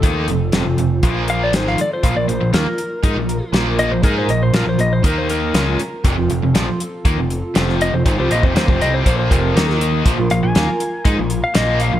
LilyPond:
<<
  \new Staff \with { instrumentName = "Electric slide guitar" } { \time 4/4 \key bes \major \tempo 4 = 120 a'4. r4 f''16 d''16 c''16 f''16 d''16 c''16 | f''16 d''16 c''8 bes'2 r8 ees''16 c''16 | bes'16 c''16 ees''16 c''16 bes'16 c''16 ees''16 c''16 bes'16 c''16 bes'4 r8 | r2. r8 ees''16 c''16 |
c''16 c''16 ees''16 c''16 c''16 c''16 ees''16 c''16 c''16 c''16 bes'4 r8 | r8 f''16 aes''2 f''16 ees''8 f''8 | }
  \new Staff \with { instrumentName = "Twelve-string acoustic guitar" } { \time 4/4 \key bes \major <f, c f a c' f'>8 <f a c' f'>8 <f, c f a c' f'>8 <f a c' f'>8 <f bes f' bes'>8 <bes f' bes'>8 <f, c f c' f' a'>8 <f c' f' a'>8 | <bes, f bes f' bes'>8 <bes f' bes'>8 <bes, f bes f' bes'>8 <bes f' bes'>8 <f bes f' bes'>8 <bes f' bes'>8 <bes, f bes f' bes'>8 <bes bes'>8 | <bes, f bes f' bes'>8 <bes f' bes'>8 <bes, f bes f' bes'>8 <bes f' bes'>8 <ees bes ees' bes'>8 <bes ees' bes'>8 <bes, f bes f' bes'>8 <bes f' bes'>8 | <f, c f c' f' a'>8 <f c' f' a'>8 <f, c f c' f' a'>8 <f c' f' a'>8 <f c' f' a'>8 <f c' f' a'>8 <f, c f c' f' a'>8 <f c' f' a'>8 |
<f, c f c' f' a'>8 <f c' a'>8 <c f c' f' a'>8 <f c' f' a'>8 <f c' f' a'>8 <f c' f' a'>8 <ees bes ees' bes'>8 <bes ees' bes'>8 | <bes, f bes f' bes'>8 <bes f' bes'>8 <bes, f bes f' bes'>8 <bes f' bes'>8 <f bes f' bes'>8 <bes f' bes'>8 <bes, f bes f' bes'>8 <bes f' bes'>8 | }
  \new Staff \with { instrumentName = "Overdriven electric guitar" } { \clef bass \time 4/4 \key bes \major <ees bes ees'>8 <f, c>8 <f, c>16 <f, c>16 <f, c>8 <bes, f bes>4 <aes, ees aes>8 r8 | <bes, f>16 <bes, f>16 <bes, f>16 <bes, f>16 <ees bes>16 r8. <aes ees'>16 <bes, f>8 r16 <bes, f bes>8. <bes, f>16 | <aes ees' aes'>8 <bes, f>8 <bes, f>16 <bes, f>16 <bes, f>8 <ees bes ees'>4 <des aes des'>8 r8 | <f, c>16 <f, c>16 <f, c>16 <f, c>16 <bes, f>16 r8. <ees bes>16 <f, c>8 r16 <f, c f>8. <f, c>16 |
<aes, ees>16 <c g>16 <bes, f>16 <f, c>16 <ees bes>16 <f, c>16 <c g c'>8 <bes, f bes>8 <f, c f>8 <ees bes ees'>4 | <bes, f>16 <bes, f>16 <bes, f>16 <bes, f>16 <ees bes>16 r8. <aes ees'>16 <bes, f>8 r16 <bes, f bes>8. <bes, f>16 | }
  \new Staff \with { instrumentName = "Overdriven electric guitar" } { \clef bass \time 4/4 \key bes \major <ees bes ees'>8 <f, c>8 <f, c>16 <f, c>16 <f, c>8 <bes, f bes>4 <aes, ees aes>8 r8 | <bes, f>16 <bes, f>16 <bes, f>16 <bes, f>16 <ees bes>16 r8. <aes ees'>16 <bes, f>8 r16 <bes, f bes>8. <bes, f>16 | <aes ees' aes'>8 <bes, f>8 <bes, f>16 <bes, f>16 <bes, f>8 <ees bes ees'>4 <des aes des'>8 r8 | <f, c>16 <f, c>16 <f, c>16 <f, c>16 <bes, f>16 r8. <ees bes>16 <f, c>8 r16 <f, c f>8. <f, c>16 |
<aes, ees>16 <c g>16 <bes, f>16 <f, c>16 <ees bes>16 <f, c>16 <c g c'>8 <bes, f bes>8 <f, c f>8 <ees bes ees'>4 | <bes, f>16 <bes, f>16 <bes, f>16 <bes, f>16 <ees bes>16 r8. <aes ees'>16 <bes, f>8 r16 <bes, f bes>8. <bes, f>16 | }
  \new Staff \with { instrumentName = "Picked electric bass" } { \clef bass \time 4/4 \key bes \major ees,8 f,,8 f,,16 f,,16 f,,8 bes,,4 aes,,8 r8 | bes,,16 bes,,16 bes,,16 bes,,16 ees,16 r8. aes,16 bes,,8 r16 bes,,8. bes,,16 | aes,8 bes,,8 bes,,16 bes,,16 bes,,8 ees,4 des,8 r8 | f,,16 f,,16 f,,16 f,,16 bes,,16 r8. ees,16 f,,8 r16 f,,8. f,,16 |
aes,,16 c,16 bes,,16 f,,16 ees,16 f,,16 c,8 bes,,8 f,,8 ees,4 | bes,,16 bes,,16 bes,,16 bes,,16 ees,16 r8. aes,16 bes,,8 r16 bes,,8. bes,,16 | }
  \new DrumStaff \with { instrumentName = "Drums" } \drummode { \time 4/4 <hh bd>8 hh8 <hh sn>8 hh8 <hh bd>8 hh8 <hh sn>16 sn16 hh8 | <hh bd>8 hh8 <hh sn>8 hh8 <hh bd>8 hh8 <hh sn>8 hh8 | <hh bd>8 hh8 <hh sn>8 hh8 <hh bd>8 hh8 <hh sn>8 hh8 | <hh bd>8 hh8 <hh sn>8 hh8 <hh bd>8 hh8 <hh sn>16 sn16 hh8 |
<hh bd>8 hh16 bd16 <hh sn>16 bd16 hh8 <hh bd>8 <hh bd>8 <hh sn>16 sn16 hh8 | <hh bd>8 hh8 <hh sn>8 hh8 <hh bd>8 hh8 <hh sn>8 hh8 | }
>>